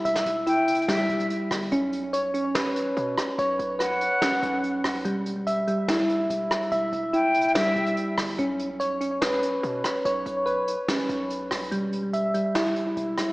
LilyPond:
<<
  \new Staff \with { instrumentName = "Flute" } { \time 4/4 \key e \dorian \tempo 4 = 144 r4 g''4 e''4 r4 | r1 | r4 fis''2. | r1 |
r4 g''4 e''4 r4 | r1 | r1 | r1 | }
  \new Staff \with { instrumentName = "Synth keys" } { \time 4/4 \key e \dorian <g e' e''>4 e'4 g2 | cis'4 cis''8 cis'8 b'2 | cis''4 b'4 cis'2 | g4 e''8 g8 e'2 |
e''4 e'4 g2 | cis'4 cis''8 cis'8 b'2 | cis''4 b'4 cis'2 | g4 e''8 g8 e'2 | }
  \new Staff \with { instrumentName = "808-style bass" } { \clef bass \time 4/4 \key e \dorian e,,8 e,,4 fis,,4 e,,8 r8 g,,8 | b,,2. b,8 r8 | b,,8 b,,4~ b,,16 r8. b,,4 b,,8 | e,,4.~ e,,16 r4 r16 e,,8 r8 |
e,,8 e,,4 fis,,4 e,,8 r8 g,,8 | b,,2. b,8 r8 | b,,8 b,,4~ b,,16 r8. b,,4 b,,8 | e,,4.~ e,,16 r4 r16 e,,8 r8 | }
  \new DrumStaff \with { instrumentName = "Drums" } \drummode { \time 4/4 hh16 sn16 hh8 \tuplet 3/2 { hh16 r16 r16 hh16 hh16 hh16 } <hh sn>8 hh16 hh16 hh8 <hho ss>8 | hh8 hh8 hh8 hh8 <hh sn>8 hh8 hh8 <hh ss>8 | hh8 hh8 <hh ss>8 hh8 <hh sn>8 hh8 hh8 <hho ss>8 | hh8 hh8 hh8 hh8 <hh sn>8 hh8 hh8 <hh ss>8 |
hh8 hh8 \tuplet 3/2 { hh16 r16 r16 hh16 hh16 hh16 } <hh sn>8 hh16 hh16 hh8 <hho ss>8 | hh8 hh8 hh8 hh8 <hh sn>8 hh8 hh8 <hh ss>8 | hh8 hh8 hh8 hh8 <hh sn>8 hh8 hh8 <hho ss>8 | hh8 hh8 hh8 hh8 <hh sn>8 hh8 hh8 <hh ss>8 | }
>>